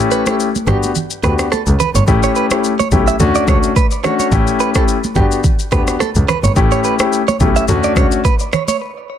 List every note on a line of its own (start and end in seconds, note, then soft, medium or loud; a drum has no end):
0.00 0.23 A3 medium
0.00 0.23 C#4 medium
0.00 0.23 E4 medium
0.00 0.23 G4 medium
0.11 0.27 B4 medium
0.11 shaker medium
0.26 0.47 A3 medium
0.26 0.47 C#4 medium
0.26 0.47 E4 medium
0.26 0.47 G4 medium
0.26 0.35 A4 medium
0.26 cross-stick loud
0.26 high conga medium
0.26 shaker medium
0.40 shaker medium
0.55 high conga medium
0.55 shaker soft
0.67 0.76 G1 medium
0.67 0.89 B3 medium
0.67 0.89 D4 medium
0.67 0.89 F#4 medium
0.67 0.89 G4 medium
0.67 0.77 G4 medium
0.67 cross-stick medium
0.67 low conga medium
0.67 shaker soft
0.83 high conga medium
0.83 shaker medium
0.95 low conga medium
0.95 shaker medium
1.11 shaker medium
1.23 1.32 D2 medium
1.23 1.45 B3 medium
1.23 1.45 D4 medium
1.23 1.45 F#4 medium
1.23 1.46 G4 medium
1.23 1.33 B4 medium
1.23 cross-stick medium
1.23 shaker medium
1.39 cross-stick medium
1.39 shaker medium
1.52 1.61 A4 medium
1.52 cross-stick medium
1.52 high conga medium
1.52 shaker medium
1.67 1.75 C#2 medium
1.67 shaker soft
1.80 1.89 B4 medium
1.80 low conga medium
1.80 shaker soft
1.95 2.03 G1 medium
1.95 2.03 C#5 medium
1.95 high conga medium
1.95 shaker medium
2.07 2.16 A1 loud
2.07 2.47 A3 medium
2.07 2.48 C#4 medium
2.07 2.48 E4 medium
2.07 2.48 G4 loud
2.07 kick loud
2.07 shaker medium
2.23 2.31 C#5 medium
2.23 shaker medium
2.36 2.46 B4 medium
2.36 shaker medium
2.51 2.71 A3 medium
2.51 2.72 C#4 medium
2.51 2.72 E4 medium
2.51 2.72 G4 medium
2.51 cross-stick loud
2.51 high conga medium
2.51 shaker medium
2.64 shaker medium
2.79 2.87 C#5 medium
2.79 high conga medium
2.79 shaker medium
2.91 3.00 B1 medium
2.91 3.13 A3 medium
2.91 3.14 C#4 medium
2.91 3.14 E4 medium
2.91 3.14 G4 medium
2.91 kick medium
2.91 low conga medium
2.91 shaker soft
3.08 3.15 E5 medium
3.08 shaker medium
3.19 3.28 D2 loud
3.19 3.46 A3 medium
3.19 3.46 C#4 medium
3.19 3.46 D4 medium
3.19 3.46 F#4 loud
3.19 low conga medium
3.19 shaker medium
3.35 3.43 D5 medium
3.35 shaker medium
3.48 3.56 C#2 medium
3.48 3.70 A3 medium
3.48 3.70 C#4 medium
3.48 3.70 D4 medium
3.48 3.70 F#4 medium
3.48 3.58 C#5 medium
3.48 kick loud
3.48 cross-stick medium
3.48 shaker medium
3.63 shaker medium
3.76 3.86 B4 medium
3.76 kick medium
3.76 high conga medium
3.76 shaker medium
3.91 shaker medium
4.04 4.30 A3 medium
4.04 4.30 C#4 medium
4.04 4.30 D4 medium
4.04 4.30 F#4 medium
4.04 4.14 C#5 medium
4.04 cross-stick loud
4.04 low conga medium
4.04 shaker soft
4.19 4.27 C#5 medium
4.19 high conga medium
4.19 shaker medium
4.32 4.40 A1 loud
4.32 4.72 A3 medium
4.32 4.72 C#4 medium
4.32 4.72 E4 medium
4.32 4.72 G4 loud
4.32 kick loud
4.32 shaker medium
4.47 shaker medium
4.60 4.70 B4 medium
4.60 shaker medium
4.75 4.96 A3 medium
4.75 4.96 C#4 medium
4.75 4.96 E4 medium
4.75 4.96 G4 medium
4.75 4.83 A4 medium
4.75 kick medium
4.75 cross-stick loud
4.75 high conga medium
4.75 shaker medium
4.88 shaker medium
5.04 high conga medium
5.04 shaker soft
5.16 5.24 G1 medium
5.16 5.38 B3 medium
5.16 5.38 D4 medium
5.16 5.38 F#4 medium
5.16 5.26 G4 medium
5.16 5.38 G4 medium
5.16 kick medium
5.16 low conga medium
5.16 shaker soft
5.32 shaker medium
5.44 kick loud
5.44 low conga medium
5.44 shaker medium
5.59 shaker medium
5.72 5.80 D2 medium
5.72 5.94 B3 medium
5.72 5.94 D4 medium
5.72 5.94 F#4 medium
5.72 5.94 G4 medium
5.72 5.82 B4 medium
5.72 kick loud
5.72 cross-stick loud
5.72 shaker medium
5.87 cross-stick medium
5.87 shaker medium
6.00 6.10 A4 medium
6.00 cross-stick medium
6.00 high conga medium
6.00 shaker medium
6.15 6.24 C#2 medium
6.15 shaker medium
6.28 6.38 B4 medium
6.28 cross-stick loud
6.28 low conga medium
6.28 shaker soft
6.44 6.52 G1 medium
6.44 6.52 C#5 medium
6.44 high conga medium
6.44 shaker medium
6.56 6.64 A1 loud
6.56 6.96 A3 medium
6.56 6.96 C#4 medium
6.56 6.96 E4 medium
6.56 6.96 G4 loud
6.56 kick loud
6.56 shaker medium
6.72 6.80 C#5 medium
6.72 shaker medium
6.84 6.94 B4 medium
6.84 shaker medium
6.99 7.20 A3 medium
6.99 7.20 C#4 medium
6.99 7.20 E4 medium
6.99 7.20 G4 medium
6.99 cross-stick loud
6.99 high conga medium
6.99 shaker medium
7.13 shaker medium
7.28 7.36 C#5 medium
7.28 high conga medium
7.28 shaker soft
7.40 7.49 B1 medium
7.40 7.62 A3 medium
7.40 7.62 C#4 medium
7.40 7.62 E4 medium
7.40 7.62 G4 medium
7.40 kick medium
7.40 low conga medium
7.40 shaker soft
7.56 7.64 E5 medium
7.56 shaker medium
7.68 7.77 D2 loud
7.68 7.94 A3 medium
7.68 7.94 C#4 medium
7.68 7.95 D4 medium
7.68 7.95 F#4 loud
7.68 low conga medium
7.68 shaker medium
7.83 7.92 D5 medium
7.83 shaker medium
7.96 8.04 C#2 medium
7.96 8.18 A3 medium
7.96 8.18 C#4 medium
7.96 8.18 D4 medium
7.96 8.18 F#4 medium
7.96 8.06 C#5 medium
7.96 kick medium
7.96 cross-stick loud
7.96 shaker medium
8.12 shaker medium
8.25 8.34 B4 medium
8.25 kick medium
8.25 high conga medium
8.25 shaker medium
8.39 shaker soft
8.53 8.62 C#5 medium
8.53 cross-stick loud
8.53 low conga medium
8.53 shaker soft
8.68 8.76 C#5 medium
8.68 high conga medium
8.68 shaker medium